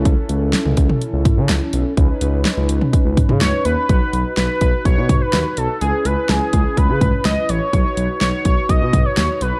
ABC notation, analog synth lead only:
X:1
M:4/4
L:1/16
Q:1/4=125
K:Bmix
V:1 name="Analog synth lead"
z16 | z12 c2 B2- | B4 B2 B2 c3 B3 A2 | G2 B2 G4 B4 d2 c2- |
c4 c2 c2 d3 c3 B2 |]